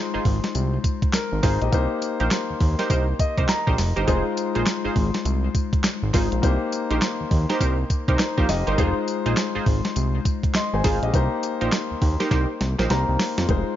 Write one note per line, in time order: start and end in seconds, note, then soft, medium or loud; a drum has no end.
0.00 1.68 G#3 medium
0.00 0.81 D#4 medium
0.00 0.82 F4 medium
0.00 0.82 C5 medium
0.14 0.19 G#1 soft
0.14 0.24 D#4 medium
0.14 0.24 F4 medium
0.14 0.24 G#4 medium
0.14 0.24 C5 medium
0.25 0.40 G#1 loud
0.25 kick medium
0.25 open hi-hat medium
0.44 snare medium
0.44 closed hi-hat medium
0.55 0.79 C2 medium
0.55 closed hi-hat medium
0.55 tambourine medium
0.84 kick medium
0.84 closed hi-hat medium
0.84 tambourine medium
1.02 kick loud
1.02 closed hi-hat medium
1.13 1.42 A#4 medium
1.13 snare loud
1.13 clap loud
1.13 closed hi-hat medium
1.13 tambourine loud
1.32 1.41 G#1 medium
1.43 1.58 G#1 loud
1.43 1.59 D#4 medium
1.43 1.61 D#4 medium
1.43 1.60 F4 medium
1.43 1.60 G#4 medium
1.43 1.60 C5 medium
1.43 1.61 C5 medium
1.43 kick loud
1.43 snare medium
1.43 open hi-hat medium
1.43 tambourine medium
1.61 1.70 A#1 medium
1.61 1.72 G4 medium
1.61 1.90 D#5 medium
1.61 closed hi-hat medium
1.72 1.87 C2 loud
1.72 4.03 A#3 medium
1.72 4.04 D#4 medium
1.72 4.04 G4 medium
1.72 4.04 C5 medium
1.72 kick loud
1.72 closed hi-hat medium
1.72 tambourine medium
2.02 closed hi-hat medium
2.02 tambourine medium
2.20 2.29 A#1 medium
2.20 2.30 D#4 medium
2.20 2.30 G4 medium
2.20 2.30 A#4 medium
2.20 2.30 C5 medium
2.20 closed hi-hat medium
2.31 snare loud
2.31 clap loud
2.31 closed hi-hat medium
2.31 tambourine loud
2.50 2.54 D#2 soft
2.60 2.75 D#2 medium
2.60 kick medium
2.60 open hi-hat medium
2.79 2.89 D#4 medium
2.79 2.89 G4 medium
2.79 2.89 A#4 medium
2.79 2.89 C5 medium
2.79 snare medium
2.79 closed hi-hat medium
2.90 3.14 C2 medium
2.90 3.07 D#4 medium
2.90 3.07 G4 medium
2.90 3.07 A#4 medium
2.90 3.07 C5 medium
2.90 kick medium
2.90 closed hi-hat medium
2.90 tambourine medium
3.19 3.47 D#5 medium
3.19 kick medium
3.19 closed hi-hat medium
3.19 tambourine medium
3.38 3.47 C2 loud
3.38 3.48 D#4 medium
3.38 3.48 G4 medium
3.38 3.48 A#4 medium
3.38 3.48 C5 medium
3.38 kick medium
3.38 closed hi-hat medium
3.48 4.04 A#5 medium
3.48 snare loud
3.48 clap loud
3.48 closed hi-hat medium
3.48 tambourine loud
3.67 3.76 A#1 medium
3.67 3.77 D#4 medium
3.67 3.77 G4 medium
3.67 3.77 A#4 medium
3.67 3.77 C5 medium
3.67 kick medium
3.78 3.93 F1 loud
3.78 snare medium
3.78 open hi-hat medium
3.78 tambourine medium
3.96 4.06 G1 medium
3.96 4.06 D#4 medium
3.96 4.06 G4 medium
3.96 4.07 A#4 medium
3.96 4.07 C5 medium
3.96 closed hi-hat medium
4.07 4.23 F1 loud
4.07 6.09 G#3 medium
4.07 4.24 D#4 medium
4.07 6.10 D#4 medium
4.07 4.24 F4 medium
4.07 6.10 F4 medium
4.07 4.24 G#4 medium
4.07 4.24 C5 loud
4.07 6.10 C5 medium
4.07 kick loud
4.07 closed hi-hat medium
4.07 tambourine medium
4.37 closed hi-hat medium
4.37 tambourine medium
4.55 4.64 A#1 medium
4.55 4.65 D#4 medium
4.55 4.65 F4 medium
4.55 4.65 G#4 medium
4.55 4.66 C5 medium
4.55 closed hi-hat medium
4.66 snare loud
4.66 clap medium
4.66 closed hi-hat medium
4.66 tambourine loud
4.85 4.89 G#1 soft
4.85 4.95 D#4 medium
4.85 4.95 F4 medium
4.85 4.95 G#4 medium
4.85 4.95 C5 medium
4.96 5.11 G#1 loud
4.96 kick medium
4.96 open hi-hat medium
5.14 snare medium
5.14 closed hi-hat medium
5.25 5.49 C2 medium
5.25 closed hi-hat medium
5.25 tambourine medium
5.55 kick medium
5.55 closed hi-hat medium
5.55 tambourine medium
5.73 kick loud
5.73 closed hi-hat medium
5.84 snare loud
5.84 clap loud
5.84 closed hi-hat medium
5.84 tambourine loud
6.03 6.12 G#1 medium
6.13 6.29 G#1 loud
6.13 6.43 G#3 medium
6.13 6.30 D#4 medium
6.13 6.41 D#4 medium
6.13 6.30 F4 medium
6.13 6.43 F4 medium
6.13 6.30 G#4 medium
6.13 6.30 C5 medium
6.13 6.43 C5 medium
6.13 kick loud
6.13 snare medium
6.13 open hi-hat medium
6.13 tambourine medium
6.32 6.41 A#1 medium
6.32 closed hi-hat medium
6.42 6.58 C2 loud
6.42 8.74 A#3 medium
6.42 8.16 D#4 medium
6.42 8.16 G4 medium
6.42 8.17 C5 medium
6.42 kick loud
6.42 closed hi-hat medium
6.42 tambourine medium
6.72 closed hi-hat medium
6.72 tambourine medium
6.90 7.00 A#1 medium
6.90 7.01 D#4 medium
6.90 7.01 G4 medium
6.90 7.01 A#4 medium
6.90 7.01 C5 medium
6.90 closed hi-hat medium
7.01 snare loud
7.01 clap medium
7.01 closed hi-hat medium
7.01 tambourine loud
7.21 7.25 D#2 medium
7.31 7.46 D#2 medium
7.31 kick loud
7.31 open hi-hat medium
7.49 7.59 D#4 medium
7.49 7.59 G4 medium
7.49 7.60 A#4 medium
7.49 7.60 C5 medium
7.49 snare medium
7.49 closed hi-hat medium
7.60 7.84 C2 medium
7.60 7.77 D#4 medium
7.60 7.77 G4 medium
7.60 7.77 A#4 medium
7.60 7.77 C5 medium
7.60 kick medium
7.60 closed hi-hat medium
7.60 tambourine medium
7.90 kick medium
7.90 closed hi-hat medium
7.90 tambourine medium
8.08 8.17 C2 loud
8.08 8.18 D#4 medium
8.08 8.18 G4 medium
8.08 8.18 A#4 medium
8.08 8.18 C5 medium
8.08 kick loud
8.08 closed hi-hat medium
8.19 8.37 D#4 medium
8.19 8.37 C5 medium
8.19 snare loud
8.19 clap medium
8.19 closed hi-hat medium
8.19 tambourine loud
8.37 8.47 A#1 medium
8.37 8.48 D#4 medium
8.37 8.48 G4 medium
8.37 8.48 A#4 medium
8.37 8.48 C5 medium
8.37 8.48 F5 medium
8.37 kick loud
8.49 8.64 F1 loud
8.49 8.67 G4 medium
8.49 8.66 D#5 medium
8.49 snare medium
8.49 open hi-hat medium
8.49 tambourine medium
8.67 8.76 G1 medium
8.67 8.77 D#4 medium
8.67 8.77 G4 medium
8.67 8.77 A#4 medium
8.67 8.77 C5 loud
8.67 8.78 C5 medium
8.67 closed hi-hat medium
8.77 8.93 F1 loud
8.77 11.09 G#3 medium
8.77 8.95 D#4 loud
8.77 11.09 D#4 medium
8.77 8.95 F4 medium
8.77 11.10 F4 medium
8.77 8.95 G#4 medium
8.77 8.95 C5 loud
8.77 10.52 C5 medium
8.77 kick loud
8.77 closed hi-hat medium
8.77 tambourine medium
9.08 closed hi-hat medium
9.08 tambourine medium
9.26 9.35 A#1 medium
9.26 9.36 D#4 medium
9.26 9.36 F4 medium
9.26 9.36 G#4 medium
9.26 9.36 C5 medium
9.26 closed hi-hat medium
9.37 snare loud
9.37 clap medium
9.37 closed hi-hat medium
9.37 tambourine loud
9.55 9.60 G#1 soft
9.55 9.65 D#4 medium
9.55 9.65 F4 medium
9.55 9.65 G#4 medium
9.55 9.66 C5 medium
9.66 9.81 G#1 medium
9.66 kick loud
9.66 open hi-hat medium
9.85 snare medium
9.85 closed hi-hat medium
9.96 10.20 C2 medium
9.96 closed hi-hat medium
9.96 tambourine medium
10.25 kick medium
10.25 closed hi-hat medium
10.25 tambourine medium
10.43 kick medium
10.43 closed hi-hat medium
10.54 10.73 D#5 medium
10.54 10.72 C6 medium
10.54 snare loud
10.54 clap loud
10.54 closed hi-hat medium
10.54 tambourine medium
10.73 10.82 G#1 medium
10.73 10.84 C5 medium
10.73 10.84 G#5 medium
10.84 10.99 G#1 loud
10.84 11.01 D#4 medium
10.84 11.01 F4 medium
10.84 11.01 G#4 medium
10.84 11.02 G#4 medium
10.84 11.01 C5 medium
10.84 11.02 F5 medium
10.84 kick loud
10.84 snare medium
10.84 open hi-hat medium
10.84 tambourine medium
11.03 11.11 A#1 medium
11.03 11.13 G4 medium
11.03 11.31 D#5 medium
11.03 closed hi-hat medium
11.13 11.29 C2 loud
11.13 12.86 A#3 medium
11.13 12.87 D#4 medium
11.13 12.87 G4 medium
11.13 12.87 C5 medium
11.13 kick loud
11.13 closed hi-hat medium
11.13 tambourine medium
11.43 closed hi-hat medium
11.43 tambourine medium
11.61 11.70 A#1 medium
11.61 11.71 D#4 medium
11.61 11.71 G4 medium
11.61 11.71 A#4 medium
11.61 11.71 C5 medium
11.61 closed hi-hat medium
11.72 snare loud
11.72 clap medium
11.72 closed hi-hat medium
11.72 tambourine loud
11.91 11.95 D#2 soft
12.02 12.17 D#2 loud
12.02 kick medium
12.02 open hi-hat medium
12.20 12.30 D#4 medium
12.20 12.30 G4 medium
12.20 12.30 A#4 medium
12.20 12.30 C5 medium
12.20 snare medium
12.20 closed hi-hat medium
12.31 12.46 C2 medium
12.31 12.48 D#4 medium
12.31 12.48 G4 medium
12.31 12.48 A#4 medium
12.31 12.48 C5 medium
12.31 kick medium
12.31 snare medium
12.31 closed hi-hat medium
12.61 12.76 C2 medium
12.61 snare medium
12.61 closed hi-hat medium
12.78 12.88 A#1 medium
12.78 12.89 D#4 medium
12.78 12.89 G4 medium
12.78 12.89 A#4 medium
12.78 12.89 C5 medium
12.78 snare medium
12.78 closed hi-hat medium
12.90 13.05 C2 loud
12.90 13.49 A#3 medium
12.90 13.47 D#4 medium
12.90 13.49 G4 medium
12.90 13.49 C5 medium
12.90 13.45 A#5 medium
12.90 snare medium
12.90 closed hi-hat medium
13.09 13.17 C2 medium
13.19 snare loud
13.19 open hi-hat medium
13.38 13.47 F2 loud
13.38 snare loud
13.38 closed hi-hat medium
13.48 13.64 F1 loud
13.48 13.76 G#3 medium
13.48 13.76 D#4 medium
13.48 13.76 F4 medium
13.48 13.76 C5 medium
13.48 kick loud
13.48 closed hi-hat medium